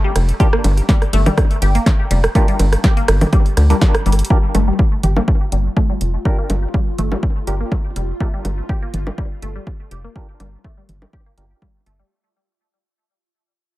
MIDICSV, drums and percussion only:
0, 0, Header, 1, 2, 480
1, 0, Start_track
1, 0, Key_signature, -2, "minor"
1, 0, Tempo, 487805
1, 394, Time_signature, 4, 2, 24, 8
1, 13555, End_track
2, 0, Start_track
2, 0, Title_t, "Drums"
2, 154, Note_on_c, 9, 37, 40
2, 154, Note_on_c, 9, 42, 94
2, 154, Note_on_c, 9, 51, 91
2, 252, Note_off_c, 9, 37, 0
2, 252, Note_off_c, 9, 42, 0
2, 252, Note_off_c, 9, 51, 0
2, 282, Note_on_c, 9, 42, 43
2, 381, Note_off_c, 9, 42, 0
2, 393, Note_on_c, 9, 36, 112
2, 394, Note_on_c, 9, 42, 57
2, 492, Note_off_c, 9, 36, 0
2, 492, Note_off_c, 9, 42, 0
2, 522, Note_on_c, 9, 37, 84
2, 620, Note_off_c, 9, 37, 0
2, 633, Note_on_c, 9, 61, 55
2, 634, Note_on_c, 9, 42, 91
2, 634, Note_on_c, 9, 51, 90
2, 732, Note_off_c, 9, 42, 0
2, 732, Note_off_c, 9, 51, 0
2, 732, Note_off_c, 9, 61, 0
2, 763, Note_on_c, 9, 42, 44
2, 861, Note_off_c, 9, 42, 0
2, 873, Note_on_c, 9, 36, 115
2, 874, Note_on_c, 9, 38, 93
2, 874, Note_on_c, 9, 42, 57
2, 972, Note_off_c, 9, 36, 0
2, 972, Note_off_c, 9, 38, 0
2, 972, Note_off_c, 9, 42, 0
2, 1002, Note_on_c, 9, 37, 41
2, 1003, Note_on_c, 9, 42, 30
2, 1101, Note_off_c, 9, 37, 0
2, 1101, Note_off_c, 9, 42, 0
2, 1114, Note_on_c, 9, 42, 90
2, 1114, Note_on_c, 9, 51, 89
2, 1212, Note_off_c, 9, 42, 0
2, 1212, Note_off_c, 9, 51, 0
2, 1242, Note_on_c, 9, 47, 80
2, 1242, Note_on_c, 9, 61, 77
2, 1243, Note_on_c, 9, 42, 46
2, 1341, Note_off_c, 9, 47, 0
2, 1341, Note_off_c, 9, 61, 0
2, 1342, Note_off_c, 9, 42, 0
2, 1353, Note_on_c, 9, 36, 117
2, 1353, Note_on_c, 9, 37, 87
2, 1354, Note_on_c, 9, 42, 55
2, 1452, Note_off_c, 9, 36, 0
2, 1452, Note_off_c, 9, 37, 0
2, 1452, Note_off_c, 9, 42, 0
2, 1483, Note_on_c, 9, 42, 31
2, 1581, Note_off_c, 9, 42, 0
2, 1594, Note_on_c, 9, 42, 90
2, 1594, Note_on_c, 9, 51, 89
2, 1692, Note_off_c, 9, 42, 0
2, 1692, Note_off_c, 9, 51, 0
2, 1722, Note_on_c, 9, 42, 44
2, 1820, Note_off_c, 9, 42, 0
2, 1833, Note_on_c, 9, 36, 115
2, 1834, Note_on_c, 9, 37, 42
2, 1834, Note_on_c, 9, 38, 94
2, 1834, Note_on_c, 9, 42, 55
2, 1932, Note_off_c, 9, 36, 0
2, 1932, Note_off_c, 9, 37, 0
2, 1932, Note_off_c, 9, 38, 0
2, 1932, Note_off_c, 9, 42, 0
2, 2074, Note_on_c, 9, 42, 94
2, 2074, Note_on_c, 9, 51, 90
2, 2172, Note_off_c, 9, 42, 0
2, 2172, Note_off_c, 9, 51, 0
2, 2202, Note_on_c, 9, 37, 83
2, 2203, Note_on_c, 9, 42, 46
2, 2301, Note_off_c, 9, 37, 0
2, 2301, Note_off_c, 9, 42, 0
2, 2314, Note_on_c, 9, 36, 116
2, 2314, Note_on_c, 9, 42, 56
2, 2412, Note_off_c, 9, 36, 0
2, 2412, Note_off_c, 9, 42, 0
2, 2442, Note_on_c, 9, 42, 32
2, 2442, Note_on_c, 9, 51, 52
2, 2540, Note_off_c, 9, 42, 0
2, 2540, Note_off_c, 9, 51, 0
2, 2553, Note_on_c, 9, 42, 91
2, 2553, Note_on_c, 9, 51, 90
2, 2554, Note_on_c, 9, 61, 56
2, 2652, Note_off_c, 9, 42, 0
2, 2652, Note_off_c, 9, 51, 0
2, 2652, Note_off_c, 9, 61, 0
2, 2682, Note_on_c, 9, 37, 42
2, 2682, Note_on_c, 9, 42, 44
2, 2780, Note_off_c, 9, 37, 0
2, 2780, Note_off_c, 9, 42, 0
2, 2793, Note_on_c, 9, 38, 98
2, 2793, Note_on_c, 9, 42, 57
2, 2794, Note_on_c, 9, 36, 118
2, 2892, Note_off_c, 9, 36, 0
2, 2892, Note_off_c, 9, 38, 0
2, 2892, Note_off_c, 9, 42, 0
2, 2922, Note_on_c, 9, 42, 30
2, 3020, Note_off_c, 9, 42, 0
2, 3034, Note_on_c, 9, 37, 84
2, 3034, Note_on_c, 9, 42, 91
2, 3034, Note_on_c, 9, 51, 89
2, 3132, Note_off_c, 9, 37, 0
2, 3132, Note_off_c, 9, 42, 0
2, 3132, Note_off_c, 9, 51, 0
2, 3162, Note_on_c, 9, 42, 46
2, 3162, Note_on_c, 9, 47, 80
2, 3162, Note_on_c, 9, 61, 77
2, 3260, Note_off_c, 9, 42, 0
2, 3260, Note_off_c, 9, 47, 0
2, 3260, Note_off_c, 9, 61, 0
2, 3273, Note_on_c, 9, 42, 57
2, 3274, Note_on_c, 9, 36, 117
2, 3371, Note_off_c, 9, 42, 0
2, 3372, Note_off_c, 9, 36, 0
2, 3402, Note_on_c, 9, 42, 31
2, 3501, Note_off_c, 9, 42, 0
2, 3513, Note_on_c, 9, 37, 42
2, 3514, Note_on_c, 9, 42, 92
2, 3514, Note_on_c, 9, 51, 91
2, 3612, Note_off_c, 9, 37, 0
2, 3613, Note_off_c, 9, 42, 0
2, 3613, Note_off_c, 9, 51, 0
2, 3642, Note_on_c, 9, 42, 43
2, 3741, Note_off_c, 9, 42, 0
2, 3754, Note_on_c, 9, 36, 114
2, 3754, Note_on_c, 9, 38, 99
2, 3754, Note_on_c, 9, 42, 60
2, 3754, Note_on_c, 9, 61, 55
2, 3852, Note_off_c, 9, 36, 0
2, 3852, Note_off_c, 9, 38, 0
2, 3852, Note_off_c, 9, 42, 0
2, 3852, Note_off_c, 9, 61, 0
2, 3882, Note_on_c, 9, 37, 84
2, 3883, Note_on_c, 9, 42, 32
2, 3981, Note_off_c, 9, 37, 0
2, 3981, Note_off_c, 9, 42, 0
2, 3994, Note_on_c, 9, 42, 55
2, 4058, Note_off_c, 9, 42, 0
2, 4058, Note_on_c, 9, 42, 68
2, 4122, Note_off_c, 9, 42, 0
2, 4122, Note_on_c, 9, 42, 77
2, 4178, Note_off_c, 9, 42, 0
2, 4178, Note_on_c, 9, 42, 91
2, 4234, Note_on_c, 9, 36, 112
2, 4276, Note_off_c, 9, 42, 0
2, 4333, Note_off_c, 9, 36, 0
2, 4473, Note_on_c, 9, 42, 89
2, 4474, Note_on_c, 9, 61, 55
2, 4572, Note_off_c, 9, 42, 0
2, 4572, Note_off_c, 9, 61, 0
2, 4714, Note_on_c, 9, 36, 110
2, 4812, Note_off_c, 9, 36, 0
2, 4954, Note_on_c, 9, 42, 86
2, 4955, Note_on_c, 9, 47, 81
2, 5052, Note_off_c, 9, 42, 0
2, 5053, Note_off_c, 9, 47, 0
2, 5082, Note_on_c, 9, 61, 74
2, 5181, Note_off_c, 9, 61, 0
2, 5194, Note_on_c, 9, 36, 114
2, 5292, Note_off_c, 9, 36, 0
2, 5433, Note_on_c, 9, 42, 89
2, 5532, Note_off_c, 9, 42, 0
2, 5674, Note_on_c, 9, 36, 116
2, 5772, Note_off_c, 9, 36, 0
2, 5913, Note_on_c, 9, 42, 89
2, 6012, Note_off_c, 9, 42, 0
2, 6154, Note_on_c, 9, 36, 118
2, 6252, Note_off_c, 9, 36, 0
2, 6393, Note_on_c, 9, 42, 91
2, 6394, Note_on_c, 9, 61, 55
2, 6492, Note_off_c, 9, 42, 0
2, 6493, Note_off_c, 9, 61, 0
2, 6633, Note_on_c, 9, 36, 113
2, 6732, Note_off_c, 9, 36, 0
2, 6873, Note_on_c, 9, 42, 88
2, 6874, Note_on_c, 9, 47, 79
2, 6972, Note_off_c, 9, 42, 0
2, 6973, Note_off_c, 9, 47, 0
2, 7003, Note_on_c, 9, 61, 76
2, 7101, Note_off_c, 9, 61, 0
2, 7113, Note_on_c, 9, 36, 117
2, 7212, Note_off_c, 9, 36, 0
2, 7354, Note_on_c, 9, 42, 91
2, 7452, Note_off_c, 9, 42, 0
2, 7593, Note_on_c, 9, 36, 118
2, 7594, Note_on_c, 9, 61, 53
2, 7692, Note_off_c, 9, 36, 0
2, 7693, Note_off_c, 9, 61, 0
2, 7834, Note_on_c, 9, 42, 92
2, 7932, Note_off_c, 9, 42, 0
2, 8073, Note_on_c, 9, 36, 118
2, 8172, Note_off_c, 9, 36, 0
2, 8313, Note_on_c, 9, 61, 56
2, 8314, Note_on_c, 9, 42, 89
2, 8411, Note_off_c, 9, 61, 0
2, 8412, Note_off_c, 9, 42, 0
2, 8553, Note_on_c, 9, 36, 115
2, 8652, Note_off_c, 9, 36, 0
2, 8794, Note_on_c, 9, 42, 87
2, 8794, Note_on_c, 9, 47, 73
2, 8892, Note_off_c, 9, 42, 0
2, 8892, Note_off_c, 9, 47, 0
2, 8922, Note_on_c, 9, 61, 75
2, 9021, Note_off_c, 9, 61, 0
2, 9034, Note_on_c, 9, 36, 118
2, 9132, Note_off_c, 9, 36, 0
2, 9274, Note_on_c, 9, 42, 92
2, 9372, Note_off_c, 9, 42, 0
2, 9514, Note_on_c, 9, 36, 117
2, 9612, Note_off_c, 9, 36, 0
2, 9754, Note_on_c, 9, 42, 88
2, 9853, Note_off_c, 9, 42, 0
2, 9994, Note_on_c, 9, 36, 112
2, 10092, Note_off_c, 9, 36, 0
2, 10234, Note_on_c, 9, 42, 85
2, 10234, Note_on_c, 9, 61, 54
2, 10332, Note_off_c, 9, 42, 0
2, 10333, Note_off_c, 9, 61, 0
2, 10474, Note_on_c, 9, 36, 113
2, 10572, Note_off_c, 9, 36, 0
2, 10714, Note_on_c, 9, 42, 87
2, 10715, Note_on_c, 9, 47, 70
2, 10813, Note_off_c, 9, 42, 0
2, 10813, Note_off_c, 9, 47, 0
2, 10843, Note_on_c, 9, 61, 75
2, 10941, Note_off_c, 9, 61, 0
2, 10954, Note_on_c, 9, 36, 111
2, 11053, Note_off_c, 9, 36, 0
2, 11194, Note_on_c, 9, 42, 88
2, 11293, Note_off_c, 9, 42, 0
2, 11434, Note_on_c, 9, 36, 108
2, 11435, Note_on_c, 9, 61, 52
2, 11532, Note_off_c, 9, 36, 0
2, 11533, Note_off_c, 9, 61, 0
2, 11674, Note_on_c, 9, 42, 86
2, 11772, Note_off_c, 9, 42, 0
2, 13555, End_track
0, 0, End_of_file